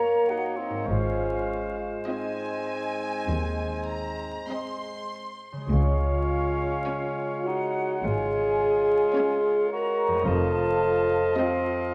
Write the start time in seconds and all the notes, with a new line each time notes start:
Already playing: F#2 A#3 C#4 F#4 A#4 C#5 A#5
0.27 D#4 F#4 F#5
0.56 C4 D#4 D#5
0.70 G#2
0.74 G#3
0.79 G#4
0.83 C#4 C5
0.87 G#1 G#2 G#3 F4 C5 F5
2.06 C4 D#4 D#5 G#5
3.28 D#2
3.90 A#5
4.49 C4 D#5 C6
5.52 C#3
5.57 G#3
5.62 G#4
5.66 F4 C#5
5.70 C#2 G#3 C#4 C#5 F5
6.86 C#4 C#5 G#5
7.44 D#4 F#4 F#5
8.00 G#1 G#4 G#5
8.04 G#2 F4
9.15 C#4 C#5 G#5
9.68 A#4 A#5
9.73 F#4
10.08 F2
10.12 A3
10.16 F4
10.21 F1 F4 D#5 A5
10.25 F2 F3 A4 D#5
11.37 C4 F4 D#5 F5 A5